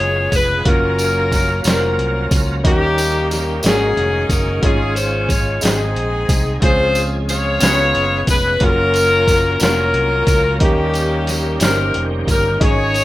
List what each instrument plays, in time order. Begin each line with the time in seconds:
Already playing: tonewheel organ C#3 G#3 B3 F4 G#4, grand piano G#3 B3 C#4 F4 G#4, saxophone section G#4 C#5
0.00 fingered electric bass F#1
0.32 fingered electric bass F1, saxophone section B4, kick, closed hi-hat, tambourine
0.64 fingered electric bass F#1, tonewheel organ F#3 A#3 C#4 A#4, grand piano F#3 A#3 C#4 F4 A#4, saxophone section C#4 F4, kick, closed hi-hat
0.69 saxophone section A#4
0.99 closed hi-hat, tambourine
1.32 kick, snare, closed hi-hat, tambourine
1.64 fingered electric bass F1, grand piano F#3 A#3 C#4 F4 C5, saxophone section F4, snare, closed hi-hat, tambourine
1.68 saxophone section C#4 A#4
1.98 fingered electric bass C2, closed hi-hat
2.31 fingered electric bass C#2, kick, closed hi-hat, tambourine
2.63 fingered electric bass D#2, grand piano D#3 A#3 C#4 D#4 G4 A#4, tonewheel organ D#3 G3 G4, saxophone section A#3 C#4 G4, kick, closed hi-hat
2.98 closed hi-hat, tambourine
3.31 saxophone section G4, snare, closed hi-hat, tambourine
3.63 fingered electric bass G#1, grand piano G#2 A#3 C#4 D#4 F#4 G#4, tonewheel organ G#3 C#4 F#4, saxophone section C#4 D#4 G#4, snare, closed hi-hat, tambourine
3.97 fingered electric bass F1, closed hi-hat
4.29 fingered electric bass F#1, saxophone section A#4, kick, closed hi-hat, tambourine
4.62 fingered electric bass G#1, grand piano G#2 G#3 C#4 F4 G#4 C#5, tonewheel organ G#3 F4, saxophone section C#4 F4 G#4, kick, closed hi-hat
4.96 saxophone section C5, closed hi-hat, tambourine
5.29 saxophone section C#5, kick, closed hi-hat, tambourine
5.61 fingered electric bass G#1, grand piano G#2 G#3 C4 D#4 G#4 C5, saxophone section C4 D#4 G#4, tonewheel organ D#4, closed hi-hat, tambourine
5.65 snare
5.96 fingered electric bass A#1, closed hi-hat
6.29 fingered electric bass C2, kick, closed hi-hat, tambourine
6.60 fingered electric bass C#2, grand piano C#3 C4 C#4 F4 G#4 C5, tonewheel organ C#3 F3 G#4, saxophone section C5, kick, closed hi-hat
6.64 saxophone section F4 G#4
6.95 closed hi-hat, tambourine
7.29 saxophone section F4 G#4 C#5, snare, closed hi-hat, tambourine
7.60 fingered electric bass C#2, grand piano C#3 B3 C#4 F4 G#4 B4, tonewheel organ B3 C#4 F4, snare, closed hi-hat, tambourine
7.95 fingered electric bass F#1, closed hi-hat
8.27 fingered electric bass F1, saxophone section B4, kick, closed hi-hat, tambourine
8.60 fingered electric bass F#1, tonewheel organ F#3 A#3 A#4, grand piano F#3 A#3 C#4 F4 G#4, saxophone section C#4 F4 A#4, kick, closed hi-hat
8.69 grand piano A#4
8.94 closed hi-hat, tambourine
9.27 kick, snare, closed hi-hat, tambourine
9.60 fingered electric bass F1, grand piano F#3 A#3 C#4 F4 A#4, saxophone section C#4 F4 A#4, snare, closed hi-hat, tambourine
9.93 fingered electric bass C2, closed hi-hat
10.27 fingered electric bass C#2, kick, closed hi-hat, tambourine
10.59 fingered electric bass D#2, grand piano D#3 A#3 C#4 D#4 G4 A#4, tonewheel organ D#3 G3 A#3 G4, kick, closed hi-hat
10.64 saxophone section A#3 C#4 G4
10.94 closed hi-hat, tambourine
11.27 saxophone section G4, snare, closed hi-hat, tambourine
11.59 fingered electric bass G1, grand piano A#3 C#4 D#4 G4 C5, snare, closed hi-hat, tambourine
11.63 saxophone section A#4
11.94 fingered electric bass F1, closed hi-hat
12.27 fingered electric bass G1, saxophone section A#4, kick, closed hi-hat, tambourine
12.60 fingered electric bass G#1, grand piano G#2 G#3 C#4 D#4 G#4 C#5, tonewheel organ G#3, saxophone section G#4 C#5, kick, closed hi-hat
12.94 closed hi-hat, tambourine